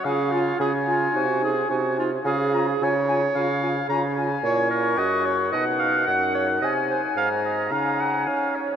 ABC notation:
X:1
M:4/4
L:1/8
Q:1/4=110
K:C#mix
V:1 name="Flute"
g g g g g g g g | g g g g g g g g | c'4 f4 | g2 a2 g4 |]
V:2 name="Oboe"
e2 g4- g z | e a g g e2 a g- | g2 f2 f4 | g4 a2 g z |]
V:3 name="Clarinet"
G E G E F G F E | G2 c4- c z | c A d c d e f c | d ^B e d e f e c |]
V:4 name="French horn"
E E E E D D D D | E E E E E E E E | =E2 F2 D2 D2- | D8 |]
V:5 name="Bassoon" clef=bass
C,2 C,2 ^B,,2 B,,2 | C,2 C,2 C,2 C,2 | A,,2 F,,2 B,,2 F,,2 | ^B,,2 G,,2 C,2 C2 |]